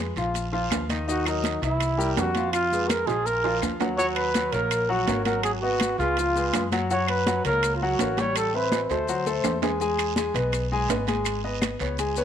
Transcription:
Already playing: B4
0.16 A#1 F3 F4 F5, high conga, short guiro, maracas
0.34 high conga, high timbale, long guiro, maracas
0.52 F3 F4 F5, high conga
0.70 D#2, high conga, high timbale, low timbale, short guiro, claves, maracas
0.89 D#3 D#4 D#5, high conga, high timbale, short guiro, maracas
1.08 D#3 D#4 F#4 D#5, high conga, long guiro, maracas
1.25 F#3 D#4 F#4 A#4, high conga, high timbale, claves, maracas
1.44 high conga, high timbale, low timbale, short guiro, maracas
1.62 C2 E3 E4 E5, high timbale, short guiro, maracas
1.80 high conga, high timbale, long guiro, claves, maracas
1.98 G3 G4 A#4, high conga, maracas
2.17 F2 F#4, high conga, high timbale, low timbale, short guiro, maracas
2.35 F3 F4 F5, high conga, high timbale, short guiro, maracas
2.53 F4, high conga, high timbale, long guiro, claves, maracas
2.72 G#3 G#4 B4, high conga, maracas
2.88 A#4, high conga, high timbale, low timbale, short guiro, claves, maracas
3.07 A#1 F3 F4 G#4 F5, high conga, high timbale, short guiro, maracas
3.26 A#4, high conga, long guiro, maracas
3.44 F3 F4 F5, high conga, high timbale
3.62 D#2, high conga, low timbale, short guiro, claves, maracas
3.80 F#3 F#4 F#5, high conga, low timbale, short guiro, maracas
3.97 F#3 F#4 C#5 F#5, high conga, long guiro, maracas
4.16 B4, high conga, high timbale, claves
4.34 F#3 F#4 F#5, high conga, high timbale, low timbale, short guiro, maracas
4.52 A#1 A#3 A#4 C#5, high timbale, short guiro, maracas
4.71 high conga, high timbale, long guiro, claves, maracas
4.89 F#3 F#4 F#5, high conga
5.06 G#1 A#3 A#4 C#5, high conga, high timbale, low timbale, short guiro, maracas
5.25 F#3 F#4 A#4 F#5, high conga, high timbale, short guiro, maracas
5.43 G#4, high conga, high timbale, long guiro, claves, maracas
5.62 B3 F#4 B4 D#5, high conga
5.80 high conga, high timbale, low timbale, short guiro, claves, maracas
5.98 C#2 G#3 F4 G#4 B4, high conga, short guiro, maracas
6.17 F3 F4 F5, high conga, high timbale, long guiro, maracas
6.36 G#3 G#4 B4, high conga, maracas
6.53 F#2, high conga, high timbale, low timbale, short guiro, claves, maracas
6.72 F#3 F#4 F#5, high conga, high timbale, short guiro, maracas
6.90 F#3 F#4 C#5 F#5, high conga, long guiro, maracas
7.07 B4, high conga, high timbale, claves
7.27 F#3 F#4 F#5, high conga, high timbale, low timbale, short guiro, maracas
7.45 C#2 A#3 A#4 C#5, high timbale, short guiro, maracas
7.63 high conga, high timbale, long guiro, claves, maracas
7.75 F4
7.81 F#3 F#4 F#5, high conga
7.99 A1 A#3 A#4 C#5, high conga, high timbale, low timbale, short guiro, maracas
8.17 G3 G4 C#5 G5, high conga, high timbale, short guiro, maracas
8.35 A4, high conga, high timbale, long guiro, claves, maracas
8.54 C4 B4 C5 E5, high conga
8.72 high conga, high timbale, short guiro, claves, maracas
8.83 B4
8.89 D2 A3 A4 C5, high conga, high timbale, short guiro, maracas
9.07 F#3 F#4 F#5, high conga, long guiro, maracas
9.26 A3 A4 C5, high conga, maracas
9.44 E2, high conga, low timbale, short guiro, claves, maracas
9.62 G#3 G#4 G#5, high conga, low timbale, short guiro, maracas
9.80 G#3 G#4 G#5, high conga, long guiro, maracas
9.98 high conga, high timbale, claves, maracas
10.16 G#3 G#4 G#5, high conga, high timbale, low timbale, short guiro, maracas
10.34 B1 B3 B4 D#5, high timbale, short guiro, maracas
10.52 high conga, high timbale, long guiro, claves, maracas
10.71 G#3 G#4 G#5, high conga
10.89 G#1 B3 B4 D#5, high conga, high timbale, low timbale, short guiro, maracas
11.07 G#3 G#4 G#5, high conga, high timbale, short guiro, maracas
11.25 high conga, high timbale, long guiro, claves, maracas
11.44 B3 B4 D#5, high conga
11.61 high conga, high timbale, low timbale, short guiro, claves, maracas
11.79 C#2 B3 B4 C#5, high conga, short guiro, maracas
11.97 G#3 G#4 G#5, high conga, high timbale, long guiro, maracas
12.16 B3 B4 C#5, high conga, maracas

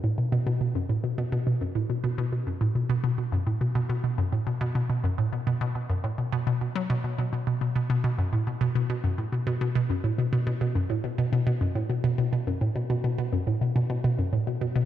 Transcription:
0.04 A2
0.18 B2
0.32 B2
0.47 B2
0.61 B2
0.75 F#2
0.89 A2
1.04 B2
1.18 B2
1.32 B2
1.47 B2
1.61 F#2
1.75 A2
1.90 B2
2.04 B2
2.18 B2
2.32 B2
2.47 F#2
2.61 A2
2.75 B2
2.89 B2
3.04 B2
3.18 B2
3.32 F#2
3.47 A2
3.61 B2
3.75 B2
3.89 B2
4.04 B2
4.18 F#2
4.32 A2
4.47 B2
4.61 B2
4.75 B2
4.90 B2
5.04 F#2
5.18 A2
5.33 B2
5.47 B2
5.61 B2
5.75 B2
5.89 F#2
6.04 A2
6.18 B2
6.32 B2
6.47 B2
6.61 B2
6.75 F#3
6.90 B2
7.04 B2
7.18 B2
7.33 B2
7.47 B2
7.61 B2
7.76 B2
7.90 B2
8.04 B2
8.18 F#2
8.33 A2
8.47 B2
8.61 B2
8.75 B2
8.90 B2
9.04 F#2
9.18 A2
9.32 B2
9.47 B2
9.61 B2
9.75 B2
9.90 F#2
10.04 A2
10.18 B2
10.33 B2
10.47 B2
10.61 B2
10.75 F#2
10.90 A2
11.04 B2
11.18 B2
11.33 B2
11.47 B2
11.61 F#2
11.75 A2
11.90 B2
12.04 B2
12.18 B2
12.33 B2
12.47 F#2
12.61 A2
12.76 B2
12.90 B2
13.04 B2
13.18 B2
13.33 F#2
13.47 A2
13.61 B2
13.76 B2
13.90 B2
14.04 B2
14.18 F#2
14.33 A2
14.47 B2
14.61 B2
14.76 B2

